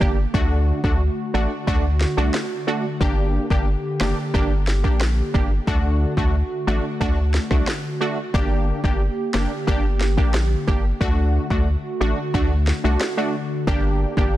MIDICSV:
0, 0, Header, 1, 5, 480
1, 0, Start_track
1, 0, Key_signature, -2, "minor"
1, 0, Tempo, 666667
1, 245, Time_signature, 4, 2, 24, 8
1, 10346, End_track
2, 0, Start_track
2, 0, Title_t, "Synth stab"
2, 0, Program_c, 0, 62
2, 3, Note_on_c, 0, 58, 76
2, 5, Note_on_c, 0, 62, 71
2, 7, Note_on_c, 0, 67, 86
2, 131, Note_off_c, 0, 58, 0
2, 132, Note_off_c, 0, 62, 0
2, 133, Note_off_c, 0, 67, 0
2, 243, Note_on_c, 0, 57, 93
2, 245, Note_on_c, 0, 62, 84
2, 247, Note_on_c, 0, 66, 101
2, 575, Note_off_c, 0, 57, 0
2, 576, Note_off_c, 0, 62, 0
2, 577, Note_off_c, 0, 66, 0
2, 603, Note_on_c, 0, 57, 75
2, 605, Note_on_c, 0, 62, 72
2, 607, Note_on_c, 0, 66, 82
2, 731, Note_off_c, 0, 57, 0
2, 732, Note_off_c, 0, 62, 0
2, 733, Note_off_c, 0, 66, 0
2, 963, Note_on_c, 0, 57, 75
2, 965, Note_on_c, 0, 62, 70
2, 967, Note_on_c, 0, 66, 84
2, 1091, Note_off_c, 0, 57, 0
2, 1092, Note_off_c, 0, 62, 0
2, 1093, Note_off_c, 0, 66, 0
2, 1202, Note_on_c, 0, 57, 92
2, 1204, Note_on_c, 0, 62, 88
2, 1207, Note_on_c, 0, 66, 106
2, 1331, Note_off_c, 0, 57, 0
2, 1332, Note_off_c, 0, 62, 0
2, 1333, Note_off_c, 0, 66, 0
2, 1563, Note_on_c, 0, 57, 77
2, 1565, Note_on_c, 0, 62, 72
2, 1567, Note_on_c, 0, 66, 84
2, 1691, Note_off_c, 0, 57, 0
2, 1692, Note_off_c, 0, 62, 0
2, 1693, Note_off_c, 0, 66, 0
2, 1923, Note_on_c, 0, 57, 78
2, 1925, Note_on_c, 0, 62, 68
2, 1927, Note_on_c, 0, 66, 84
2, 2051, Note_off_c, 0, 57, 0
2, 2052, Note_off_c, 0, 62, 0
2, 2053, Note_off_c, 0, 66, 0
2, 2162, Note_on_c, 0, 58, 94
2, 2165, Note_on_c, 0, 62, 85
2, 2167, Note_on_c, 0, 67, 101
2, 2495, Note_off_c, 0, 58, 0
2, 2496, Note_off_c, 0, 62, 0
2, 2497, Note_off_c, 0, 67, 0
2, 2522, Note_on_c, 0, 58, 75
2, 2524, Note_on_c, 0, 62, 70
2, 2527, Note_on_c, 0, 67, 86
2, 2651, Note_off_c, 0, 58, 0
2, 2652, Note_off_c, 0, 62, 0
2, 2653, Note_off_c, 0, 67, 0
2, 2882, Note_on_c, 0, 58, 76
2, 2885, Note_on_c, 0, 62, 68
2, 2887, Note_on_c, 0, 67, 84
2, 3011, Note_off_c, 0, 58, 0
2, 3012, Note_off_c, 0, 62, 0
2, 3013, Note_off_c, 0, 67, 0
2, 3122, Note_on_c, 0, 58, 96
2, 3125, Note_on_c, 0, 62, 86
2, 3127, Note_on_c, 0, 67, 100
2, 3251, Note_off_c, 0, 58, 0
2, 3252, Note_off_c, 0, 62, 0
2, 3253, Note_off_c, 0, 67, 0
2, 3482, Note_on_c, 0, 58, 73
2, 3485, Note_on_c, 0, 62, 68
2, 3487, Note_on_c, 0, 67, 85
2, 3611, Note_off_c, 0, 58, 0
2, 3612, Note_off_c, 0, 62, 0
2, 3613, Note_off_c, 0, 67, 0
2, 3843, Note_on_c, 0, 58, 76
2, 3845, Note_on_c, 0, 62, 67
2, 3847, Note_on_c, 0, 67, 81
2, 3971, Note_off_c, 0, 58, 0
2, 3972, Note_off_c, 0, 62, 0
2, 3973, Note_off_c, 0, 67, 0
2, 4083, Note_on_c, 0, 57, 93
2, 4085, Note_on_c, 0, 62, 87
2, 4087, Note_on_c, 0, 66, 102
2, 4415, Note_off_c, 0, 57, 0
2, 4416, Note_off_c, 0, 62, 0
2, 4417, Note_off_c, 0, 66, 0
2, 4443, Note_on_c, 0, 57, 79
2, 4445, Note_on_c, 0, 62, 70
2, 4447, Note_on_c, 0, 66, 89
2, 4571, Note_off_c, 0, 57, 0
2, 4572, Note_off_c, 0, 62, 0
2, 4573, Note_off_c, 0, 66, 0
2, 4803, Note_on_c, 0, 57, 79
2, 4804, Note_on_c, 0, 62, 70
2, 4807, Note_on_c, 0, 66, 84
2, 4931, Note_off_c, 0, 57, 0
2, 4932, Note_off_c, 0, 62, 0
2, 4933, Note_off_c, 0, 66, 0
2, 5043, Note_on_c, 0, 57, 93
2, 5045, Note_on_c, 0, 62, 87
2, 5047, Note_on_c, 0, 66, 104
2, 5171, Note_off_c, 0, 57, 0
2, 5172, Note_off_c, 0, 62, 0
2, 5173, Note_off_c, 0, 66, 0
2, 5403, Note_on_c, 0, 57, 74
2, 5405, Note_on_c, 0, 62, 73
2, 5408, Note_on_c, 0, 66, 84
2, 5531, Note_off_c, 0, 57, 0
2, 5532, Note_off_c, 0, 62, 0
2, 5533, Note_off_c, 0, 66, 0
2, 5763, Note_on_c, 0, 57, 76
2, 5766, Note_on_c, 0, 62, 68
2, 5767, Note_on_c, 0, 66, 85
2, 5891, Note_off_c, 0, 57, 0
2, 5892, Note_off_c, 0, 62, 0
2, 5893, Note_off_c, 0, 66, 0
2, 6003, Note_on_c, 0, 58, 92
2, 6005, Note_on_c, 0, 62, 89
2, 6007, Note_on_c, 0, 67, 100
2, 6335, Note_off_c, 0, 58, 0
2, 6337, Note_off_c, 0, 62, 0
2, 6337, Note_off_c, 0, 67, 0
2, 6363, Note_on_c, 0, 58, 76
2, 6366, Note_on_c, 0, 62, 69
2, 6368, Note_on_c, 0, 67, 84
2, 6491, Note_off_c, 0, 58, 0
2, 6492, Note_off_c, 0, 62, 0
2, 6493, Note_off_c, 0, 67, 0
2, 6723, Note_on_c, 0, 58, 77
2, 6725, Note_on_c, 0, 62, 68
2, 6727, Note_on_c, 0, 67, 81
2, 6851, Note_off_c, 0, 58, 0
2, 6852, Note_off_c, 0, 62, 0
2, 6853, Note_off_c, 0, 67, 0
2, 6963, Note_on_c, 0, 58, 91
2, 6965, Note_on_c, 0, 62, 83
2, 6967, Note_on_c, 0, 67, 101
2, 7091, Note_off_c, 0, 58, 0
2, 7092, Note_off_c, 0, 62, 0
2, 7093, Note_off_c, 0, 67, 0
2, 7323, Note_on_c, 0, 58, 77
2, 7325, Note_on_c, 0, 62, 70
2, 7327, Note_on_c, 0, 67, 80
2, 7451, Note_off_c, 0, 58, 0
2, 7452, Note_off_c, 0, 62, 0
2, 7453, Note_off_c, 0, 67, 0
2, 7684, Note_on_c, 0, 58, 76
2, 7686, Note_on_c, 0, 62, 69
2, 7688, Note_on_c, 0, 67, 89
2, 7811, Note_off_c, 0, 58, 0
2, 7813, Note_off_c, 0, 62, 0
2, 7814, Note_off_c, 0, 67, 0
2, 7923, Note_on_c, 0, 57, 88
2, 7925, Note_on_c, 0, 62, 82
2, 7927, Note_on_c, 0, 66, 104
2, 8255, Note_off_c, 0, 57, 0
2, 8256, Note_off_c, 0, 62, 0
2, 8257, Note_off_c, 0, 66, 0
2, 8282, Note_on_c, 0, 57, 81
2, 8285, Note_on_c, 0, 62, 71
2, 8286, Note_on_c, 0, 66, 84
2, 8411, Note_off_c, 0, 57, 0
2, 8412, Note_off_c, 0, 62, 0
2, 8413, Note_off_c, 0, 66, 0
2, 8642, Note_on_c, 0, 57, 75
2, 8645, Note_on_c, 0, 62, 70
2, 8647, Note_on_c, 0, 66, 89
2, 8771, Note_off_c, 0, 57, 0
2, 8772, Note_off_c, 0, 62, 0
2, 8773, Note_off_c, 0, 66, 0
2, 8883, Note_on_c, 0, 57, 98
2, 8885, Note_on_c, 0, 62, 89
2, 8887, Note_on_c, 0, 66, 102
2, 9011, Note_off_c, 0, 57, 0
2, 9012, Note_off_c, 0, 62, 0
2, 9013, Note_off_c, 0, 66, 0
2, 9244, Note_on_c, 0, 57, 80
2, 9246, Note_on_c, 0, 62, 67
2, 9248, Note_on_c, 0, 66, 84
2, 9372, Note_off_c, 0, 57, 0
2, 9373, Note_off_c, 0, 62, 0
2, 9374, Note_off_c, 0, 66, 0
2, 9483, Note_on_c, 0, 57, 71
2, 9485, Note_on_c, 0, 62, 67
2, 9487, Note_on_c, 0, 66, 78
2, 9611, Note_off_c, 0, 57, 0
2, 9612, Note_off_c, 0, 62, 0
2, 9613, Note_off_c, 0, 66, 0
2, 9843, Note_on_c, 0, 58, 89
2, 9845, Note_on_c, 0, 62, 85
2, 9847, Note_on_c, 0, 67, 100
2, 10175, Note_off_c, 0, 58, 0
2, 10176, Note_off_c, 0, 62, 0
2, 10177, Note_off_c, 0, 67, 0
2, 10203, Note_on_c, 0, 58, 77
2, 10205, Note_on_c, 0, 62, 71
2, 10207, Note_on_c, 0, 67, 85
2, 10331, Note_off_c, 0, 58, 0
2, 10332, Note_off_c, 0, 62, 0
2, 10333, Note_off_c, 0, 67, 0
2, 10346, End_track
3, 0, Start_track
3, 0, Title_t, "Analog synth pad"
3, 0, Program_c, 1, 89
3, 0, Note_on_c, 1, 50, 78
3, 0, Note_on_c, 1, 58, 72
3, 0, Note_on_c, 1, 67, 91
3, 226, Note_off_c, 1, 58, 0
3, 226, Note_off_c, 1, 67, 0
3, 246, Note_on_c, 1, 57, 74
3, 246, Note_on_c, 1, 66, 91
3, 2146, Note_off_c, 1, 57, 0
3, 2146, Note_off_c, 1, 66, 0
3, 2165, Note_on_c, 1, 58, 73
3, 2165, Note_on_c, 1, 67, 87
3, 4066, Note_off_c, 1, 58, 0
3, 4066, Note_off_c, 1, 67, 0
3, 4085, Note_on_c, 1, 57, 75
3, 4085, Note_on_c, 1, 66, 91
3, 5976, Note_off_c, 1, 50, 0
3, 5986, Note_off_c, 1, 57, 0
3, 5986, Note_off_c, 1, 66, 0
3, 6005, Note_on_c, 1, 58, 74
3, 6005, Note_on_c, 1, 67, 92
3, 6006, Note_on_c, 1, 50, 83
3, 7906, Note_off_c, 1, 58, 0
3, 7906, Note_off_c, 1, 67, 0
3, 7926, Note_on_c, 1, 57, 76
3, 7926, Note_on_c, 1, 66, 90
3, 9827, Note_off_c, 1, 57, 0
3, 9827, Note_off_c, 1, 66, 0
3, 9845, Note_on_c, 1, 67, 90
3, 9846, Note_on_c, 1, 58, 74
3, 10346, Note_off_c, 1, 50, 0
3, 10346, Note_off_c, 1, 58, 0
3, 10346, Note_off_c, 1, 67, 0
3, 10346, End_track
4, 0, Start_track
4, 0, Title_t, "Analog synth bass"
4, 0, Program_c, 2, 38
4, 8, Note_on_c, 2, 31, 101
4, 188, Note_off_c, 2, 31, 0
4, 246, Note_on_c, 2, 38, 111
4, 517, Note_off_c, 2, 38, 0
4, 604, Note_on_c, 2, 38, 95
4, 785, Note_off_c, 2, 38, 0
4, 965, Note_on_c, 2, 33, 101
4, 1056, Note_off_c, 2, 33, 0
4, 1206, Note_on_c, 2, 38, 102
4, 1478, Note_off_c, 2, 38, 0
4, 1565, Note_on_c, 2, 36, 97
4, 1656, Note_off_c, 2, 36, 0
4, 2165, Note_on_c, 2, 31, 115
4, 2437, Note_off_c, 2, 31, 0
4, 2523, Note_on_c, 2, 31, 98
4, 2705, Note_off_c, 2, 31, 0
4, 2885, Note_on_c, 2, 30, 98
4, 2976, Note_off_c, 2, 30, 0
4, 3125, Note_on_c, 2, 31, 100
4, 3486, Note_on_c, 2, 34, 91
4, 3497, Note_off_c, 2, 31, 0
4, 3758, Note_off_c, 2, 34, 0
4, 3847, Note_on_c, 2, 31, 95
4, 4028, Note_off_c, 2, 31, 0
4, 4085, Note_on_c, 2, 38, 118
4, 4357, Note_off_c, 2, 38, 0
4, 4443, Note_on_c, 2, 38, 90
4, 4625, Note_off_c, 2, 38, 0
4, 4805, Note_on_c, 2, 33, 97
4, 4896, Note_off_c, 2, 33, 0
4, 5046, Note_on_c, 2, 38, 101
4, 5317, Note_off_c, 2, 38, 0
4, 5406, Note_on_c, 2, 36, 97
4, 5496, Note_off_c, 2, 36, 0
4, 6005, Note_on_c, 2, 31, 114
4, 6277, Note_off_c, 2, 31, 0
4, 6363, Note_on_c, 2, 31, 96
4, 6545, Note_off_c, 2, 31, 0
4, 6725, Note_on_c, 2, 30, 101
4, 6816, Note_off_c, 2, 30, 0
4, 6966, Note_on_c, 2, 31, 100
4, 7327, Note_on_c, 2, 34, 86
4, 7337, Note_off_c, 2, 31, 0
4, 7598, Note_off_c, 2, 34, 0
4, 7687, Note_on_c, 2, 31, 100
4, 7868, Note_off_c, 2, 31, 0
4, 7925, Note_on_c, 2, 38, 115
4, 8197, Note_off_c, 2, 38, 0
4, 8283, Note_on_c, 2, 38, 97
4, 8465, Note_off_c, 2, 38, 0
4, 8645, Note_on_c, 2, 33, 98
4, 8736, Note_off_c, 2, 33, 0
4, 8886, Note_on_c, 2, 38, 101
4, 9157, Note_off_c, 2, 38, 0
4, 9245, Note_on_c, 2, 36, 96
4, 9336, Note_off_c, 2, 36, 0
4, 9845, Note_on_c, 2, 31, 111
4, 10117, Note_off_c, 2, 31, 0
4, 10203, Note_on_c, 2, 31, 98
4, 10346, Note_off_c, 2, 31, 0
4, 10346, End_track
5, 0, Start_track
5, 0, Title_t, "Drums"
5, 8, Note_on_c, 9, 36, 94
5, 80, Note_off_c, 9, 36, 0
5, 246, Note_on_c, 9, 36, 110
5, 318, Note_off_c, 9, 36, 0
5, 603, Note_on_c, 9, 36, 80
5, 675, Note_off_c, 9, 36, 0
5, 1206, Note_on_c, 9, 36, 90
5, 1278, Note_off_c, 9, 36, 0
5, 1445, Note_on_c, 9, 38, 67
5, 1517, Note_off_c, 9, 38, 0
5, 1683, Note_on_c, 9, 37, 88
5, 1686, Note_on_c, 9, 38, 112
5, 1755, Note_off_c, 9, 37, 0
5, 1758, Note_off_c, 9, 38, 0
5, 2165, Note_on_c, 9, 36, 110
5, 2237, Note_off_c, 9, 36, 0
5, 2523, Note_on_c, 9, 36, 80
5, 2595, Note_off_c, 9, 36, 0
5, 2883, Note_on_c, 9, 37, 99
5, 2887, Note_on_c, 9, 38, 120
5, 2955, Note_off_c, 9, 37, 0
5, 2959, Note_off_c, 9, 38, 0
5, 3126, Note_on_c, 9, 36, 85
5, 3198, Note_off_c, 9, 36, 0
5, 3365, Note_on_c, 9, 38, 70
5, 3437, Note_off_c, 9, 38, 0
5, 3486, Note_on_c, 9, 36, 86
5, 3558, Note_off_c, 9, 36, 0
5, 3603, Note_on_c, 9, 37, 89
5, 3606, Note_on_c, 9, 38, 111
5, 3675, Note_off_c, 9, 37, 0
5, 3678, Note_off_c, 9, 38, 0
5, 3847, Note_on_c, 9, 36, 92
5, 3919, Note_off_c, 9, 36, 0
5, 4085, Note_on_c, 9, 36, 114
5, 4157, Note_off_c, 9, 36, 0
5, 4443, Note_on_c, 9, 36, 79
5, 4515, Note_off_c, 9, 36, 0
5, 5046, Note_on_c, 9, 36, 89
5, 5118, Note_off_c, 9, 36, 0
5, 5285, Note_on_c, 9, 38, 68
5, 5357, Note_off_c, 9, 38, 0
5, 5406, Note_on_c, 9, 36, 86
5, 5406, Note_on_c, 9, 37, 81
5, 5478, Note_off_c, 9, 36, 0
5, 5478, Note_off_c, 9, 37, 0
5, 5523, Note_on_c, 9, 37, 88
5, 5526, Note_on_c, 9, 38, 112
5, 5595, Note_off_c, 9, 37, 0
5, 5598, Note_off_c, 9, 38, 0
5, 6005, Note_on_c, 9, 36, 111
5, 6077, Note_off_c, 9, 36, 0
5, 6363, Note_on_c, 9, 36, 78
5, 6435, Note_off_c, 9, 36, 0
5, 6724, Note_on_c, 9, 37, 98
5, 6727, Note_on_c, 9, 38, 121
5, 6796, Note_off_c, 9, 37, 0
5, 6799, Note_off_c, 9, 38, 0
5, 6966, Note_on_c, 9, 36, 87
5, 7038, Note_off_c, 9, 36, 0
5, 7205, Note_on_c, 9, 38, 72
5, 7277, Note_off_c, 9, 38, 0
5, 7326, Note_on_c, 9, 36, 88
5, 7398, Note_off_c, 9, 36, 0
5, 7443, Note_on_c, 9, 37, 92
5, 7446, Note_on_c, 9, 38, 113
5, 7515, Note_off_c, 9, 37, 0
5, 7518, Note_off_c, 9, 38, 0
5, 7687, Note_on_c, 9, 36, 96
5, 7759, Note_off_c, 9, 36, 0
5, 7925, Note_on_c, 9, 36, 111
5, 7997, Note_off_c, 9, 36, 0
5, 8283, Note_on_c, 9, 36, 81
5, 8355, Note_off_c, 9, 36, 0
5, 8886, Note_on_c, 9, 36, 87
5, 8958, Note_off_c, 9, 36, 0
5, 9125, Note_on_c, 9, 38, 72
5, 9197, Note_off_c, 9, 38, 0
5, 9362, Note_on_c, 9, 37, 90
5, 9366, Note_on_c, 9, 38, 113
5, 9434, Note_off_c, 9, 37, 0
5, 9438, Note_off_c, 9, 38, 0
5, 9845, Note_on_c, 9, 36, 113
5, 9917, Note_off_c, 9, 36, 0
5, 10203, Note_on_c, 9, 36, 81
5, 10275, Note_off_c, 9, 36, 0
5, 10346, End_track
0, 0, End_of_file